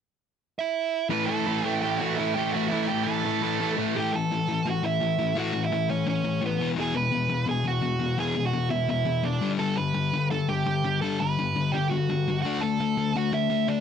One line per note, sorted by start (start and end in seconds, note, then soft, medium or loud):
0.59 1.08 E4 medium
0.59 1.07 E5 medium
1.10 1.28 A2 loud
1.10 1.28 E3 medium
1.10 1.29 A3 loud
1.10 1.27 B4 medium
1.10 1.26 B5 medium
1.26 1.46 A2 medium
1.26 1.47 E3 medium
1.26 1.47 A3 medium
1.26 1.74 A4 medium
1.26 1.77 A5 loud
1.46 1.64 A2 medium
1.46 1.64 E3 medium
1.46 1.65 A3 loud
1.64 1.82 A2 medium
1.64 1.83 E3 loud
1.64 1.83 A3 loud
1.79 1.99 A2 medium
1.79 2.01 E3 medium
1.79 1.82 F#5 medium
1.79 2.00 G5 medium
1.84 2.01 A3 medium
1.84 1.99 G4 medium
1.98 2.18 A2 medium
1.98 2.18 E3 medium
1.98 2.19 A3 loud
1.98 2.17 F#4 medium
1.98 2.15 F#5 medium
2.16 2.35 A2 medium
2.16 2.36 E3 medium
2.16 2.36 A3 medium
2.16 2.34 E4 medium
2.16 2.33 E5 medium
2.34 2.53 A2 medium
2.34 2.53 E3 medium
2.34 2.54 A3 medium
2.34 2.53 G4 medium
2.34 2.52 G5 medium
2.51 2.71 A2 loud
2.51 2.71 E3 loud
2.51 2.69 F#4 medium
2.51 2.68 F#5 medium
2.55 2.72 A3 loud
2.68 2.88 A2 medium
2.68 2.87 E4 medium
2.68 2.85 E5 medium
2.72 2.88 E3 medium
2.72 2.89 A3 medium
2.87 3.05 A2 medium
2.87 3.06 E3 medium
2.87 3.07 A3 medium
2.87 3.05 G4 medium
2.87 3.04 G5 medium
3.04 3.23 A2 medium
3.04 3.24 E3 loud
3.04 3.72 A4 medium
3.04 3.71 A5 medium
3.08 3.25 A3 medium
3.25 3.41 A2 medium
3.25 3.42 E3 medium
3.25 3.42 A3 loud
3.42 3.59 A2 medium
3.42 3.59 E3 medium
3.42 3.60 A3 loud
3.60 3.75 A2 medium
3.60 3.76 E3 medium
3.60 3.76 A3 medium
3.76 3.93 A2 medium
3.76 3.93 E3 medium
3.76 3.94 A3 loud
3.95 4.11 A2 medium
3.95 4.11 E3 loud
3.95 4.12 A3 loud
3.95 4.11 G4 medium
3.95 4.15 G5 medium
4.13 4.29 A2 medium
4.13 4.29 E3 medium
4.13 4.61 A4 medium
4.13 4.68 A5 loud
4.31 4.46 A2 medium
4.31 4.46 E3 medium
4.48 4.63 A2 medium
4.48 4.63 E3 medium
4.66 4.81 A2 medium
4.66 4.81 E3 medium
4.66 4.82 F#4 medium
4.70 4.84 F#5 medium
4.83 4.99 A2 medium
4.83 4.99 E3 medium
4.83 5.32 E4 medium
4.83 5.39 E5 medium
5.00 5.16 A2 medium
5.00 5.16 E3 medium
5.19 5.34 A2 medium
5.19 5.34 E3 medium
5.35 5.52 A2 medium
5.35 5.52 E3 loud
5.35 5.53 A3 loud
5.35 5.61 F#4 medium
5.35 5.64 F#5 loud
5.54 5.69 A2 medium
5.54 5.69 E3 medium
5.64 5.87 E4 medium
5.64 5.89 E5 medium
5.72 5.87 A2 medium
5.72 5.88 E3 medium
5.89 6.05 A2 medium
5.89 6.05 E3 medium
5.89 6.05 C#4 medium
5.89 6.07 C#5 medium
6.07 6.22 A2 medium
6.07 6.22 E3 medium
6.07 6.40 C#4 medium
6.07 6.41 C#5 medium
6.24 6.40 A2 medium
6.24 6.40 E3 medium
6.42 6.57 A2 medium
6.42 6.58 E3 medium
6.42 6.68 B3 medium
6.47 6.69 B4 medium
6.60 6.75 E2 medium
6.60 6.76 B2 loud
6.60 6.76 E3 medium
6.76 6.93 E2 medium
6.76 6.94 B2 medium
6.76 6.94 E3 loud
6.76 6.95 G#4 medium
6.81 6.97 G#5 loud
6.95 7.10 E2 medium
6.95 7.10 B2 medium
6.95 7.44 B4 medium
6.95 7.45 B5 loud
7.12 7.28 E2 medium
7.12 7.28 B2 medium
7.30 7.45 E2 medium
7.30 7.46 B2 medium
7.46 7.63 E2 medium
7.46 7.63 B2 medium
7.46 7.65 G#4 medium
7.51 7.68 G#5 loud
7.64 7.80 E2 medium
7.64 7.81 B2 medium
7.64 8.16 F#4 medium
7.64 8.20 F#5 loud
7.82 7.98 E2 medium
7.82 7.99 B2 medium
8.00 8.16 E2 medium
8.00 8.16 B2 medium
8.18 8.35 E2 medium
8.18 8.34 B2 loud
8.18 8.36 E3 medium
8.18 8.44 G#4 medium
8.18 8.46 G#5 medium
8.36 8.52 E2 medium
8.36 8.52 B2 medium
8.45 8.70 F#4 medium
8.45 8.70 F#5 medium
8.53 8.69 E2 medium
8.53 8.69 B2 medium
8.70 8.87 E2 medium
8.70 8.87 B2 medium
8.70 8.88 E4 medium
8.70 8.89 E5 medium
8.89 9.04 E2 medium
8.89 9.05 B2 medium
8.89 9.23 E4 medium
8.89 9.26 E5 medium
9.05 9.22 E2 medium
9.05 9.22 B2 medium
9.23 9.40 E2 medium
9.23 9.40 B2 medium
9.23 9.49 D4 medium
9.23 9.49 D5 medium
9.41 9.58 G2 medium
9.41 9.58 D3 loud
9.41 9.59 G3 medium
9.59 9.75 G2 medium
9.59 9.76 D3 loud
9.59 9.77 G3 loud
9.59 9.76 A4 medium
9.59 9.76 A5 loud
9.76 9.93 G2 medium
9.76 9.93 D3 medium
9.76 10.27 B4 medium
9.76 10.27 B5 medium
9.94 10.11 G2 medium
9.94 10.11 D3 medium
10.14 10.29 G2 medium
10.14 10.30 D3 medium
10.31 10.47 G2 medium
10.31 10.48 D3 medium
10.31 10.48 A4 medium
10.31 10.49 A5 medium
10.49 10.65 G2 medium
10.49 10.65 D3 medium
10.49 10.99 G4 medium
10.49 11.02 G5 loud
10.66 10.82 G2 medium
10.66 10.83 D3 medium
10.85 11.00 G2 medium
10.85 11.00 D3 medium
11.01 11.19 G2 medium
11.01 11.19 D3 loud
11.01 11.19 G3 loud
11.01 11.18 A4 medium
11.01 11.20 A5 medium
11.20 11.36 G2 medium
11.20 11.37 D3 medium
11.20 11.70 B4 medium
11.20 11.75 B5 loud
11.39 11.54 G2 medium
11.39 11.54 D3 medium
11.56 11.72 G2 medium
11.56 11.72 D3 medium
11.72 11.89 G2 medium
11.72 11.90 D3 medium
11.72 11.89 G4 medium
11.72 11.90 G5 medium
11.89 12.07 G2 medium
11.89 12.07 D3 medium
11.89 12.40 F#4 medium
11.89 12.41 F#5 medium
12.10 12.25 G2 medium
12.10 12.25 D3 medium
12.28 12.43 G2 medium
12.28 12.43 D3 medium
12.42 12.61 D3 loud
12.42 12.61 A3 loud
12.42 12.62 D4 loud
12.42 12.60 F#4 medium
12.42 12.61 F#5 medium
12.61 12.78 D3 medium
12.61 12.78 A3 medium
12.61 13.12 A4 medium
12.61 13.16 A5 medium
12.80 12.96 D3 medium
12.80 12.96 A3 medium
12.97 13.13 D3 medium
12.97 13.14 A3 medium
13.16 13.31 D3 medium
13.16 13.32 A3 medium
13.16 13.33 F#4 medium
13.16 13.33 F#5 medium
13.33 13.49 D3 medium
13.33 13.49 A3 medium
13.33 13.67 E4 medium
13.33 13.70 E5 medium
13.50 13.66 D3 medium
13.50 13.66 A3 medium
13.68 13.80 D3 medium
13.68 13.80 A3 medium
13.68 13.80 D4 medium
13.68 13.80 D5 medium